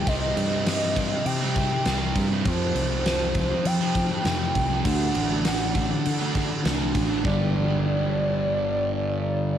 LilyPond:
<<
  \new Staff \with { instrumentName = "Soft synth lead" } { \time 4/4 \key d \phrygian \tempo 4 = 100 ees''2 g''4. r8 | c''2 g''2 | fis''2. r4 | d''1 | }
  \new Staff \with { instrumentName = "Distorted electric guitar" } { \clef bass \time 4/4 \key d \phrygian <c g c'>8. <g c'>16 <c g c'>8 <c g c'>8. <g c'>16 <c g c'>8 <c g c'>8. <g c'>16 | <f, c f>8. <c f>16 <f, c f>8 <f, c f>8. <c f>16 <f, c f>8 <f, c f>8. <c f>16 | <d a d'>8. <a d'>16 <d a d'>8 <d a d'>8. <a d'>16 <d a d'>8 <d a d'>8. <a d'>16 | <g, d g>1 | }
  \new Staff \with { instrumentName = "Fingered electric bass" } { \clef bass \time 4/4 \key d \phrygian c,8 g,4. c4 c,8 g,8 | f,8 c,4. f4 f,8 c,8 | d,8 a,,4. d4 c,8 a,,8 | g,,1 | }
  \new DrumStaff \with { instrumentName = "Drums" } \drummode { \time 4/4 <cymc bd>8 cymc8 <cymc sn>8 <cymc bd>8 cymc8 <cymc bd>8 <cymc sn>8 <cymc bd>8 | <cymc bd>8 cymc8 <cymc sn>8 <cymc bd>8 cymc8 <cymc bd>8 <cymc sn>8 <cymc bd>8 | <cymc bd>8 cymc8 <cymc sn>8 <cymc bd>8 cymc8 <cymc bd>8 <cymc sn>8 <cymc bd>8 | bd4 r4 r4 r4 | }
>>